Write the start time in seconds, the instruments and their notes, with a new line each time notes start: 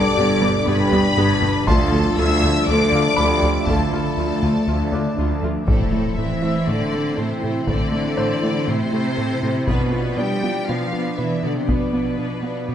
Already playing: double bass section G1, cello section G2, ambient pad B2 G3 D4 D5, trombone section G3 D4, french horn section A4, violin section D5 D6, grand piano A5
0.17 double bass section G1, analog synth bass G2, cello section G2, viola section B3 G4, synth pluck B3
0.42 analog synth bass G3, viola section B3 G4, synth pluck D4, taiko low
0.66 double bass section G1, cello section G2, analog synth bass G2, synth pluck G3, viola section B3 G4, french horn section G4, violin section B4 B5
0.92 analog synth bass G3, viola section B3 G4, synth pluck D4, taiko low
1.17 double bass section G1, analog synth bass G2, cello section G2, viola section B3 G4, french horn section D4, synth pluck G4
1.42 analog synth bass G2, viola section B3 G4, synth pluck B3, taiko low
1.66 analog synth bass D2, double bass section D2, cello section D2, synth pluck D3, trombone section F3 D4, ambient pad F3 A3 D5 E5, viola section A3 F4, french horn section F4, violin section A4 A5, grand piano C6, taiko
1.92 analog synth bass D3, synth pluck A3, viola section A3 F4
2.17 analog synth bass D2, double bass section D2, cello section D2, synth pluck F3, viola section A3 F4, violin section E5 E6
2.42 analog synth bass D3, synth pluck A3, viola section A3 F4, taiko low
2.67 cello section D2, double bass section D2, analog synth bass D2, synth pluck D3, viola section A3 F4, french horn section A4, violin section D5 D6
2.92 analog synth bass D3, synth pluck A3, viola section A3 F4, taiko low
3.17 cello section D2, analog synth bass D2, double bass section D2, viola section A3 F4, synth pluck D4, french horn section G4, grand piano B5
3.42 analog synth bass D2, synth pluck F3, viola section A3 F4, taiko low
3.67 cello section D2, analog synth bass D2, double bass section D2, synth pluck D3, viola section A3 F4, french horn section F4, violin section A4 A5, taiko
3.92 analog synth bass D3, synth pluck A3, viola section A3 F4
4.17 analog synth bass D2, cello section D2, double bass section D2, synth pluck F3, viola section A3 F4
4.42 analog synth bass D3, synth pluck A3, viola section A3 F4, taiko low
4.67 analog synth bass D2, cello section D2, double bass section D2, synth pluck D3, viola section A3 F4
4.92 analog synth bass D3, synth pluck A3, viola section A3 F4, grand piano D4 D5, taiko low
5.16 cello section D2, double bass section D2, analog synth bass D2, viola section A3 F4, synth pluck D4
5.42 analog synth bass D2, synth pluck F3, viola section A3 F4, taiko low
5.66 cello section A2, analog synth bass A2, ambient pad E3 C4 E4 C5, synth pluck A3, french horn section A3, viola section A3, violin section C4 E4 A4, taiko, impact
5.92 analog synth bass A3, viola section A3, violin section C4 E4, synth pluck E4
6.17 analog synth bass A2, cello section E3, viola section A3, synth pluck C4, violin section C4 E4 E5, french horn section E4
6.42 viola section A3, analog synth bass A3, violin section C4 E4, synth pluck E4, grand piano E5
6.66 analog synth bass A2, cello section D3, synth pluck A3, viola section A3, violin section C4 E4 D5, french horn section D4
6.92 viola section A3, analog synth bass A3, violin section C4 E4, synth pluck E4
7.16 analog synth bass A2, cello section C3, viola section A3, french horn section C4, violin section C4 E4 C5, synth pluck A4
7.42 analog synth bass A2, viola section A3, synth pluck C4, violin section C4 E4
7.67 analog synth bass A2, cello section D3, synth pluck A3, viola section A3, violin section C4 E4 D5, french horn section D4, taiko
7.92 analog synth bass A3, viola section A3, violin section C4 E4, synth pluck E4
8.17 analog synth bass A2, viola section A3, synth pluck C4, violin section C4 E4, grand piano C5
8.42 viola section A3, analog synth bass A3, violin section C4 E4, synth pluck E4
8.67 analog synth bass A2, cello section C3, synth pluck A3, viola section A3, violin section C4 E4 C5, french horn section C4
8.92 analog synth bass A3, viola section A3, violin section C4 E4, synth pluck E4
9.17 analog synth bass A2, viola section A3, violin section C4 E4, synth pluck A4
9.42 analog synth bass A2, viola section A3, synth pluck C4, violin section C4 E4
9.67 cello section B2, analog synth bass B2, ambient pad F3 B3 D4 D5, synth pluck B3, viola section B3, violin section B3 D4 B4, french horn section B3, taiko
9.92 viola section B3, analog synth bass B3, violin section B3 D4, synth pluck F4
10.18 analog synth bass B2, cello section G3, viola section B3, violin section B3 D4 G5, synth pluck D4, french horn section G4, grand piano D5
10.43 viola section B3, analog synth bass B3, violin section B3 D4, synth pluck F4
10.68 analog synth bass B2, cello section F3, viola section B3, synth pluck B3, violin section B3 D4 F5, french horn section F4
10.93 viola section B3, violin section B3 D4, analog synth bass B3, synth pluck F4
11.17 analog synth bass B2, cello section E3, viola section B3, violin section B3 D4 E5, french horn section E4, synth pluck B4
11.43 analog synth bass B2, cello section D3, viola section B3, violin section B3 D4 D5, french horn section D4, synth pluck D4
11.54 cello section C3, french horn section C4, violin section C5
11.68 analog synth bass B2, cello section B2, french horn section B3, viola section B3, synth pluck B3, violin section B3 D4 B4, taiko
11.93 viola section B3, violin section B3 D4, analog synth bass B3, synth pluck F4
12.17 analog synth bass B2, viola section B3, violin section B3 D4, synth pluck D4
12.43 analog synth bass B3, viola section B3, violin section B3 D4, synth pluck F4
12.68 analog synth bass B2, viola section B3, violin section B3 D4, synth pluck B3